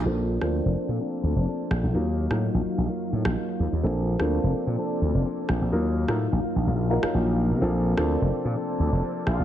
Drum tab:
SD |---r----------r-|---r-------r----|---r----------r-|---r-------r----|

SD |---r----------r-|